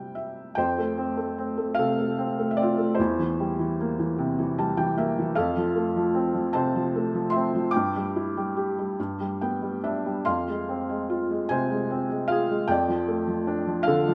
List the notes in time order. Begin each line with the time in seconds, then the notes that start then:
Already playing: C3 G3 E4 C5 G5
0.15 E5
0.55 F2 C5 G5
0.78 A3
0.98 C4
1.17 A3
1.38 C4
1.57 A3
1.75 F5
1.79 C3 A4
1.98 A3
2.18 C4
2.39 A3
2.51 E5
2.57 C4 D5
2.63 F4
2.78 A3
2.95 C5
2.99 E2 E4
3.19 E3
3.40 G3
3.59 E3
3.80 A#3
3.99 E3
4.18 C3
4.38 E3
4.58 G3 A5
4.77 E3 G5
4.97 A#3 E5
5.18 E3
5.35 F2 A4 F5
5.57 F3
5.75 A3
5.96 F3
6.15 C4
6.34 F3
6.53 C3 C5 A5
6.75 F3
6.96 A3
7.14 F3
7.30 E5 C6
7.35 C4
7.55 F3
7.71 G5 D6
7.76 G2
7.96 G3
8.16 E4
8.37 G3
8.57 G4
8.79 G3
9.00 G2
9.20 G3
9.41 B3 G5
9.62 G3
9.84 D4 E5
10.06 G3
10.25 F2 F5 C6
10.48 G#3
10.69 C4
10.89 G#3
11.10 F4
11.31 G#3
11.49 C3 C5 G#5
11.70 G#3
11.90 C4
12.09 G#3
12.28 F4 G#4 F5
12.49 G#3
12.68 F2 D5 G5
12.88 F3
13.08 A3
13.27 F3
13.47 D4
13.67 F3
13.83 F5
13.87 D3 A4
14.07 F3